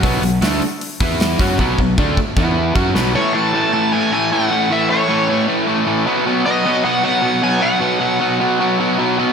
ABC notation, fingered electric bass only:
X:1
M:4/4
L:1/8
Q:1/4=154
K:Alyd
V:1 name="Fingered electric bass" clef=bass
B,,, B,,, =D,, z2 E,,2 F,, | B,,, B,,, =D,, z E,,2 F,, B,,, | z8 | z8 |
z8 | z8 |]